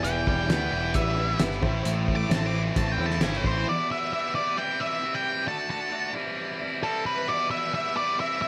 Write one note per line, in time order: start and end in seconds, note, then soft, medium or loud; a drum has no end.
0.00 0.23 E1 loud
0.00 3.44 E3 medium
0.00 0.36 E4 medium
0.00 0.36 G4 medium
0.00 0.36 B4 medium
0.04 1.18 E2 medium
0.04 0.26 G5 loud
0.04 closed hi-hat medium
0.26 0.47 E1 medium
0.26 0.93 G3 medium
0.26 1.16 G3 medium
0.26 0.93 G5 loud
0.26 kick medium
0.49 0.69 D2 medium
0.49 1.38 B3 medium
0.49 0.94 B3 medium
0.49 0.85 E4 medium
0.49 0.86 G4 medium
0.49 0.86 B4 medium
0.49 snare loud
0.49 closed hi-hat medium
0.71 0.92 E1 medium
0.71 2.52 E3 medium
0.71 1.16 E4 medium
0.94 1.34 A1 medium
0.94 1.63 G3 medium
0.94 1.63 B3 medium
0.94 1.13 E4 medium
0.94 1.13 G4 medium
0.94 1.14 B4 medium
0.94 1.39 E5 loud
0.94 kick loud
0.94 closed hi-hat medium
1.17 1.63 G3 medium
1.17 2.53 E4 medium
1.17 1.35 E4 medium
1.17 1.35 G4 medium
1.17 1.36 B4 medium
1.39 1.60 G1 medium
1.39 1.63 B3 medium
1.39 1.59 E4 medium
1.39 3.20 E4 medium
1.39 1.63 G4 medium
1.39 1.63 B4 medium
1.39 snare loud
1.39 closed hi-hat medium
1.51 snare soft
1.61 1.82 A1 medium
1.61 1.84 A2 medium
1.61 1.83 A2 medium
1.61 2.16 E4 loud
1.61 2.17 A4 medium
1.61 2.17 C5 loud
1.61 kick loud
1.84 2.25 A1 medium
1.84 2.98 A2 medium
1.84 closed hi-hat medium
2.07 2.74 A3 medium
2.07 2.98 A3 medium
2.07 kick medium
2.16 2.30 D6 loud
2.29 2.69 A1 medium
2.29 2.75 C4 medium
2.29 3.20 C4 medium
2.29 2.66 E4 medium
2.29 2.66 A4 medium
2.29 2.67 C5 medium
2.29 2.46 A5 medium
2.29 snare loud
2.29 closed hi-hat medium
2.46 2.60 D6 medium
2.52 3.66 E3 medium
2.52 2.97 E4 medium
2.75 2.96 A1 medium
2.75 3.66 A3 medium
2.75 3.44 C4 medium
2.75 2.94 E4 medium
2.75 2.94 A4 medium
2.75 2.94 C5 medium
2.75 2.92 A5 medium
2.75 kick loud
2.75 closed hi-hat medium
2.92 3.06 G5 medium
2.98 3.18 E2 medium
2.98 3.67 A3 medium
2.98 3.66 E4 medium
2.98 3.17 E4 medium
2.98 3.17 A4 medium
2.98 3.18 C5 medium
3.06 3.21 A5 medium
3.10 snare soft
3.20 3.40 G1 loud
3.20 3.66 C4 medium
3.20 3.66 E4 medium
3.20 3.57 E4 medium
3.20 3.57 A4 medium
3.20 3.45 B4 medium
3.20 3.58 C5 medium
3.20 3.37 D6 loud
3.20 snare loud
3.20 closed hi-hat medium
3.33 snare soft
3.37 3.66 C6 medium
3.44 3.64 A1 medium
3.44 3.67 E3 medium
3.44 3.67 C4 medium
3.44 3.67 C5 medium
3.44 kick medium
3.66 4.11 E2 medium
3.66 4.12 B2 loud
3.66 3.90 E3 loud
3.66 3.90 G3 loud
3.66 3.89 B3 loud
3.66 3.88 E4 loud
3.66 3.91 D5 loud
3.89 4.10 E3 medium
3.89 4.12 G3 medium
3.89 4.12 B3 medium
3.89 4.13 E4 medium
3.89 4.12 E5 loud
4.11 4.36 E3 medium
4.11 4.35 G3 medium
4.11 4.34 B3 medium
4.11 4.33 E4 medium
4.11 4.35 E5 loud
4.34 4.55 E3 medium
4.34 4.56 G3 medium
4.34 4.56 B3 medium
4.34 4.55 E4 medium
4.34 4.58 D5 medium
4.56 5.00 C3 medium
4.56 5.01 E3 loud
4.56 4.81 G3 medium
4.56 4.80 C4 loud
4.56 4.78 E4 loud
4.56 4.80 G5 loud
4.79 5.02 G3 medium
4.79 5.03 C4 medium
4.79 5.03 E4 medium
4.79 5.15 E5 loud
5.02 5.46 C3 loud
5.02 5.45 E3 loud
5.02 5.46 G3 loud
5.02 5.47 C4 loud
5.02 5.47 E4 loud
5.14 5.48 G5 loud
5.45 5.89 D3 loud
5.45 5.69 A3 loud
5.45 5.68 D4 loud
5.45 5.67 F#4 loud
5.45 5.69 A5 loud
5.68 5.90 A3 medium
5.68 5.91 D4 medium
5.68 5.92 F#4 medium
5.68 6.12 A5 loud
5.90 6.12 D3 medium
5.90 6.13 A3 medium
5.90 6.13 D4 medium
5.90 6.12 F#4 medium
6.13 6.80 C3 medium
6.13 6.81 E3 medium
6.13 6.61 G3 medium
6.13 6.59 C4 medium
6.13 6.58 E4 medium
6.59 6.81 G3 medium
6.59 6.82 C4 medium
6.59 6.83 E4 medium
6.81 7.26 C3 medium
6.81 7.26 E3 medium
6.81 7.26 G3 loud
6.81 7.27 C4 loud
6.81 7.27 E4 loud
6.81 7.06 A4 medium
7.06 7.29 B4 medium
7.27 7.73 E2 loud
7.27 7.73 B2 loud
7.27 7.51 E3 loud
7.27 7.50 G3 loud
7.27 7.49 B3 loud
7.27 7.48 E4 loud
7.27 7.50 D5 loud
7.49 7.71 E3 medium
7.49 7.72 G3 medium
7.49 7.73 B3 medium
7.49 7.74 E4 medium
7.49 7.73 E5 loud
7.72 7.96 E3 medium
7.72 7.95 G3 medium
7.72 7.94 B3 medium
7.72 7.93 E4 medium
7.72 7.95 E5 loud
7.94 8.16 E3 medium
7.94 8.17 G3 medium
7.94 8.17 B3 medium
7.94 8.16 E4 medium
7.94 8.19 D5 medium
8.17 8.48 C3 medium
8.17 8.48 E3 medium
8.17 8.42 G3 medium
8.17 8.41 C4 loud
8.17 8.39 E4 loud
8.17 8.41 E5 loud
8.40 8.48 G3 medium
8.40 8.48 C4 medium
8.40 8.48 E4 medium
8.40 8.48 E5 medium